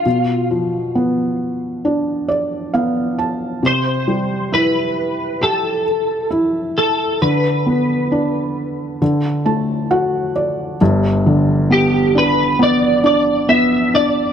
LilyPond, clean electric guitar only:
\new Staff \with { instrumentName = "Clean electric guitar" } { \time 4/4 \key g \major \tempo 4 = 67 f'8 r2. r8 | c''4 b'4 a'4 r8 a'8 | b'2. r4 | r4 g'8 b'8 d''8 d''8 e''8 d''8 | }